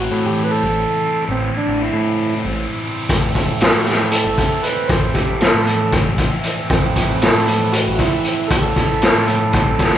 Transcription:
Already playing: A2 E3 E4
0.00 C4 F#4
0.11 A2
0.26 E3 G4
0.44 B4
0.51 C4 A4
0.63 A1
0.77 E4
1.03 C4
1.29 A1 A2 C4
1.55 D4 E4
1.67 A1
1.81 C4 E4
1.93 A2
2.07 E3
2.32 C4
2.44 A1
2.59 E4
2.84 C4
3.09 A1 A2 E3 A3 C4 A4, kick, closed hi-hat
3.35 E4, kick, closed hi-hat
3.47 A1
3.61 C4 F#4, snare, closed hi-hat
3.73 A2
3.86 E3 G4, snare, closed hi-hat
4.11 C4 A4, closed hi-hat
4.25 A1
4.38 E4, kick, closed hi-hat
4.63 C4 B4, closed hi-hat
4.88 A1 A2 C5, kick, closed hi-hat
5.14 E4 G4, kick, closed hi-hat
5.28 A1
5.40 C4 A4, snare, closed hi-hat
5.54 A2
5.67 E3, closed hi-hat
5.92 C4, kick, closed hi-hat
6.06 A1
6.18 E4, kick, closed hi-hat
6.44 C4, closed hi-hat
6.70 A1 A2 C4 B4, kick, closed hi-hat
6.96 E4, kick, closed hi-hat
7.09 A1
7.22 C4 A4, snare, closed hi-hat
7.35 A2
7.48 E3, closed hi-hat
7.72 C4 F#4, closed hi-hat
7.87 A1
7.93 F#4
7.98 E4, kick, closed hi-hat
8.24 C4, closed hi-hat
8.48 A1 A4, kick, closed hi-hat
8.52 A2
8.56 G4
8.62 A4
8.76 E4, kick, closed hi-hat
8.89 A1
9.02 C4, snare, closed hi-hat
9.15 A2
9.28 E3, closed hi-hat
9.53 C4, kick, closed hi-hat
9.66 A1
9.79 E4, kick, snare, closed hi-hat
9.93 snare

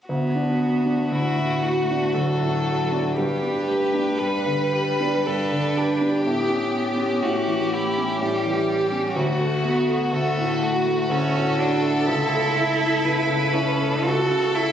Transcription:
0.08 D2 B3 F#4
0.35 D4
0.60 F#4
0.86 D4
1.10 D2 A3 E4
1.37 A2
1.63 F#4
1.91 D4
2.14 D2 F#3 A4
2.41 A2
2.66 F#4
2.92 D4
3.16 G2 G3 G4 B4
3.42 D4
3.67 A3 G4
3.94 D4
4.19 G2 G3 B4
4.46 D3
4.72 G4 B4
5.00 D4
5.26 G2 D4 A4
5.52 D3
5.77 G4
6.01 D4
6.26 A2 B3 G4
6.50 C#4
6.73 G4
6.98 C#4
7.22 A2 A3 F#4
7.47 E3
7.73 E4 G4
7.97 C#4
8.21 A2 G3 G4
8.45 E3
8.69 G4
8.92 C#4
9.15 D2 A3 F#4
9.40 A3
9.64 B3 F#4
9.88 A3
10.13 D2 A3 A4
10.37 A2
10.61 F#4
10.85 A3
11.09 D2 C#4 A4
11.34 A2
11.58 D4 F#4
11.82 A3
12.06 C#2 E4 A4
12.33 A3
12.56 E4
12.81 A3
13.05 C#2 B4
13.30 C#3
13.53 C#4 E4
13.79 A3
14.04 C#2 F#4 A4
14.30 C#3
14.55 E4

